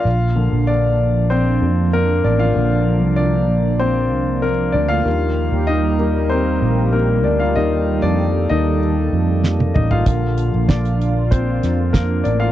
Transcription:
<<
  \new Staff \with { instrumentName = "Analog synth pad" } { \time 4/4 \key bes \major \tempo 4 = 96 << { d'1~ | d'1 | bes'1 | a'1 |
f'1 | } \\ { <f bes>1~ | <f bes>1 | <g bes g'>1~ | <g bes g'>1 |
<bes d'>1 | } >> }
  \new Staff \with { instrumentName = "Grand piano" } { \time 4/4 \key bes \major <f' f''>4 <d' d''>4 <c' c''>4 <bes bes'>8 <d' d''>16 <f' f''>16~ | <f' f''>4 <d' d''>4 <c' c''>4 <bes bes'>8 <d' d''>16 <f' f''>16~ | <f' f''>4 <ees' ees''>4 <c' c''>4 <bes bes'>8 <d' d''>16 <f' f''>16 | <ees' ees''>8. <d' d''>8. <ees' ees''>2 <ees' ees''>16 <f' f''>16~ |
<f' f''>4 <d' d''>4 <c' c''>4 <bes bes'>8 <d' d''>16 <f' f''>16 | }
  \new Staff \with { instrumentName = "Grand piano" } { \clef bass \time 4/4 \key bes \major r8 <d f bes>4. r2 | <d f bes>1 | <ees g bes>4. <ees g bes>8 r2 | <ees g bes>8 r4 <ees g bes>8 r2 |
<d f bes>8 r2. r8 | }
  \new Staff \with { instrumentName = "Fretless electric bass" } { \clef bass \time 4/4 \key bes \major bes,,8. bes,,4.~ bes,,16 f,4 a,,8 | bes,,8. c,8. bes,,4 c,4 d,8 | ees,8. ees,4.~ ees,16 bes,,4 d,8 | ees,8. f,8. ees,4 f,4 a,,8 |
bes,,8. bes,,4.~ bes,,16 f,4 a,,8 | }
  \new DrumStaff \with { instrumentName = "Drums" } \drummode { \time 4/4 r4 r4 r4 r4 | r4 r4 r4 r4 | r4 r4 r4 r4 | r4 r4 r4 sn16 tommh16 toml16 tomfh16 |
<hh bd>8 hh8 <hh bd sn>16 hh16 hh8 <hh bd>8 <hh sn>8 <hh bd sn>8 hh8 | }
>>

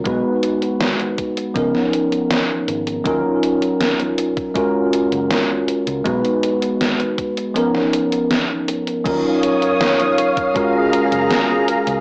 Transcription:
<<
  \new Staff \with { instrumentName = "String machine" } { \time 4/4 \key fis \major \tempo 4 = 80 << { r1 | r1 | r1 | <cis'' dis'''>2 <gis' ais''>2 | } \\ { r1 | r1 | r1 | eis''1 | } >> }
  \new Staff \with { instrumentName = "Tine electric piano" } { \time 4/4 \key fis \major <gis b dis' fis' b'>2 <eis b cis' dis' ais'>2 | <fis cis' dis' eis' ais'>2 <gis cis' eis' fis' ais'>2 | <gis b dis' fis' b'>2 <eis b cis' dis' ais'>2 | <fis cis' dis' eis' ais'>2 <gis cis' eis' fis' ais'>2 | }
  \new Staff \with { instrumentName = "Fingered electric bass" } { \clef bass \time 4/4 \key fis \major b,,16 r4. r16 cis,16 r4 r16 gis,,8 | dis,16 r2 r8 fis,,16 r8. cis,16 | b,,16 r2. r8. | dis,16 r2 r8 fis,,16 r8. cis,16 | }
  \new DrumStaff \with { instrumentName = "Drums" } \drummode { \time 4/4 <hh bd>8 hh16 hh16 <hh sn>16 hh16 <hh bd>16 hh16 <hh bd>16 sn16 hh16 hh16 <hh sn>8 hh16 hh16 | <hh bd>8 hh16 hh16 <hh sn>16 hh16 hh16 <hh bd>16 <hh bd>8 hh16 hh16 <hh sn>8 hh16 hh16 | <hh bd>16 hh16 hh16 hh16 <hh sn>16 hh16 <hh bd>16 hh16 hh16 sn16 hh16 hh16 <hh sn>8 hh16 hh16 | <cymc hh bd>8 hh16 hh16 <hh sn>16 hh16 hh16 <hh bd>16 <hh bd>8 hh16 hh16 <hh sn>8 hh16 hh16 | }
>>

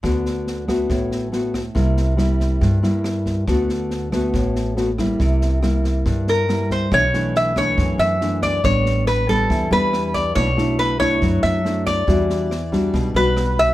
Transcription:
<<
  \new Staff \with { instrumentName = "Resonator guitar played with a steel bar" } { \time 4/4 \key d \major \tempo 4 = 140 r1 | r1 | r1 | r2 r8 bes'4 c''8 |
cis''4 e''8 cis''4 e''4 d''8 | cis''4 b'8 a'4 b'4 d''8 | cis''4 b'8 cis''4 e''4 d''8~ | d''2~ d''8 b'4 e''8 | }
  \new Staff \with { instrumentName = "Nylon-string guitar" } { \time 4/4 \key d \major << { <a b fis'>4. <a b fis'>4. <a b fis'>8 r8 | <g bes e'>4 <g bes e'>4. <g bes e'>4. | <a b fis'>4. <a b fis'>4. <a b fis'>8 <g bes e'>8~ | <g bes e'>4 <g bes e'>2 <g bes e'>4 |
<e a d'>8 <e a d'>4 <e a d'>4. <e a d'>4 | <g b d'>4. <g b d'>4 <g b d'>4. | <a d' e'>8 <a d' e'>4 <a d' e'>4. <a d' e'>4 | <g d' fis'>4 r8 <g d' fis'>4 <g d' fis'>4. | } \\ { d2 a,2 | c2 g,2 | d2 a,2 | c2 g,2 |
b,2 fis,2 | a,2 e2 | b,2 fis2 | e2 b,2 | } >> }
  \new Staff \with { instrumentName = "Upright bass" } { \clef bass \time 4/4 \key d \major d,2 a,,2 | c,2 g,2 | d,2 a,,2 | c,2 g,2 |
b,,2 fis,8 fis,4. | a,,2 e,8 e,4. | b,,2 fis,8 fis,4. | e,2 b,,8 b,,4. | }
  \new DrumStaff \with { instrumentName = "Drums" } \drummode { \time 4/4 <bd ss sn>8 sn8 sn8 <bd ss sn>8 <bd sn>8 sn8 sn8 <bd ss sn>8 | <bd sn>8 sn8 <ss sn>8 <bd sn>8 <bd sn>8 sn8 <ss sn>8 <bd sn>8 | <bd ss sn>8 sn8 sn8 <bd ss sn>8 <bd sn>8 sn8 sn8 <bd ss sn>8 | <bd sn>8 sn8 <ss sn>8 <bd sn>8 <bd sn>8 sn8 <ss sn>8 <bd sn>8 |
<bd ss sn>8 sn8 sn8 <bd ss sn>8 <bd sn>8 sn8 sn8 <bd ss sn>8 | <bd sn>8 sn8 <ss sn>8 <bd sn>8 <bd sn>8 sn8 <ss sn>8 <bd sn>8 | <bd ss sn>8 sn8 sn8 <bd ss sn>8 <bd sn>8 sn8 sn8 <bd ss sn>8 | <bd sn>8 sn8 <ss sn>8 <bd sn>8 <bd sn>8 sn8 <ss sn>8 <bd sn>8 | }
>>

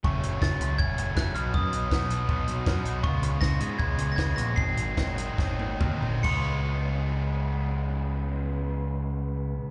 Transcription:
<<
  \new Staff \with { instrumentName = "Glockenspiel" } { \time 4/4 \key des \mixolydian \tempo 4 = 152 des'''4 a'''4 aes'''4 ges'''8 f'''8 | ees'''4. r2 r8 | des'''4 bes'''4 aes'''8.~ aes'''32 bes'''32 aes'''8 bes'''8 | c''''4. r2 r8 |
des''''1~ | des''''1 | }
  \new Staff \with { instrumentName = "Overdriven electric guitar" } { \time 4/4 \key des \mixolydian <ges, des ges a des'>4 <ges, des ges a des'>8 <ges a des'>8 <des ges a des'>4 <des ges a des'>8 <ces ges ces' ees'>8 | <ces ges ces' ees'>4 <ces ges ces' ees'>8 <ges ces' ees'>8 <ces ges ces' ees'>4 <ces ges ces' ees'>8 <ges ces' ees'>8 | <des aes ces' f'>4 <des aes ces' f'>8 <aes ces' f'>8 <des aes ces' f'>4 <des aes ces' f'>8 <aes ces' f'>8 | <aes, ees ges c' ees'>4 <aes, ees ges c' ees'>8 <ges c' ees'>8 <ees ges c' ees'>4 <ees ges c' ees'>8 <ges c' ees'>8 |
<des aes ces' f' aes'>1~ | <des aes ces' f' aes'>1 | }
  \new Staff \with { instrumentName = "Picked electric bass" } { \clef bass \time 4/4 \key des \mixolydian ges,,8 ges,,8 ges,,8 des,8 ges,,8 ges,,8 ges,,8 ces,8 | ges,8 ces,8 ces,4 ces,8 ces,8 ges,8 ces,8 | des,8 des,8 des,8 aes,8 des,8 des,8 des,8 bes,,8 | aes,,8 aes,,8 aes,,4 aes,,8 aes,,8 ees,8 aes,,8 |
des,1~ | des,1 | }
  \new DrumStaff \with { instrumentName = "Drums" } \drummode { \time 4/4 bd8 hh8 <bd sn>8 hh8 bd8 hh8 <bd sn>8 hh8 | bd8 hh8 <bd sn>8 hh8 bd8 hh8 <bd sn>8 hh8 | bd8 hh8 <bd sn>8 hh8 bd8 hh8 <bd sn>8 hh8 | bd8 hh8 <bd sn>8 hh8 <bd sn>8 tommh8 <bd toml>8 tomfh8 |
<cymc bd>4 r4 r4 r4 | r4 r4 r4 r4 | }
>>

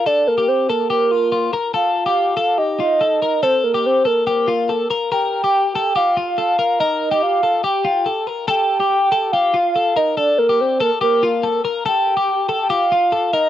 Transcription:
<<
  \new Staff \with { instrumentName = "Soft synth lead" } { \time 4/4 \key f \mixolydian \tempo 4 = 142 d''8 bes'8 c''8 bes'8 bes'4. r8 | f''2 ees''2 | c''8 bes'8 c''8 bes'8 bes'4. r8 | g''2 f''2 |
ees''4 f''4 g''4. r8 | g''2 f''4. ees''8 | d''8 bes'8 c''8 bes'8 bes'4. r8 | g''4~ \tuplet 3/2 { g''4~ g''16 g''16 } f''4. ees''8 | }
  \new Staff \with { instrumentName = "Clean electric guitar" } { \time 4/4 \key f \mixolydian a'8. g'8. a'8 g'8 f'8 f'8 bes'8 | a'8. g'8. a'8 g'8 f'8 a'8 bes'8 | a'8. g'8. a'8 g'8 f'8 a'8 bes'8 | bes'8. g'8. a'8 g'8 f'8 a'8 bes'8 |
bes'8. g'8. a'8 g'8 f'8 a'8 bes'8 | a'8. g'8. a'8 g'8 f'8 a'8 bes'8 | a'8. g'8. a'8 g'8 f'8 a'8 bes'8 | a'8. g'8. a'8 g'8 f'8 a'8 bes'8 | }
>>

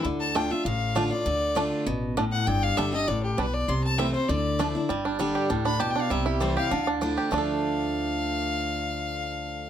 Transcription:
<<
  \new Staff \with { instrumentName = "Fiddle" } { \time 4/4 \key d \dorian \tempo 4 = 198 r8 a''8 g''8 e''8 f''4. d''8~ | d''2 r4. fis''8 | g''8 f''8 e''8 ees''8 d''8 g'8 b'8 d''8 | c'''8 a''8 e''8 c''8 d''4.~ d''16 r16 |
r2 r8 b''8 \tuplet 3/2 { a''8 g''8 f''8 } | e''8 g'8 c''8 f''4 r4. | f''1~ | f''1 | }
  \new Staff \with { instrumentName = "Five-string banjo" } { \time 4/4 \key d \dorian r4 <a d'>8 r4. <a d'>8 r8 | r4 <a d'>8 r4. <a d'>8 r8 | r4 <g d'>8 r4. <g d'>8 r8 | r4 <g c' e'>8 r4. <a d'>8 r8 |
g8 d'8 g8 g'8 d'8 d'8 g'8 d'8 | g8 e'8 g8 g'8 d8 d'8 d'8 g'8 | <a d' a'>1~ | <a d' a'>1 | }
  \new Staff \with { instrumentName = "Steel-string acoustic guitar" } { \time 4/4 \key d \dorian << { r4 <d a d' f'>8 <d' f'>8 r4 <d a d' f'>8 <d' f'>8 | r4 <d a d' f'>4 r2 | r4 <d g d' g'>8 <d' g'>8 r2 | r4 <e a c' e'>8 <c' e'>8 r4 <f a d' e'>8 <d' e'>8 |
r4 <d g d' g'>4 r2 | r4 <e a c' e'>8 <c' e'>8 r4 <f a d' e'>4 | <d f a d'>1~ | <d f a d'>1 | } \\ { d2 a,2 | d2 b,4 a,4 | g,2 a,4 b,4 | c2 d2 |
g,2 a,4 b,4 | c2 d2 | r1 | r1 | } >> }
  \new Staff \with { instrumentName = "Upright bass" } { \clef bass \time 4/4 \key d \dorian d,2 a,,2 | d,2 a,,2 | g,,4 g,,4 a,,4 b,,4 | c,2 d,2 |
g,,2 d,2 | c,2 d,2 | d,1~ | d,1 | }
>>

